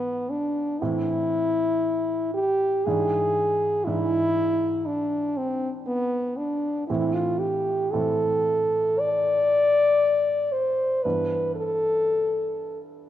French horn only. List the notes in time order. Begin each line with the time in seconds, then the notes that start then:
Already playing: B3
0.30 D4
0.81 E4
2.34 G4
2.84 G#4
3.85 E4
4.86 D4
5.37 C4
5.87 B3
6.37 D4
6.87 E4
7.13 F4
7.39 G4
7.92 A4
9.00 D5
10.52 C5
11.03 B4
11.56 A4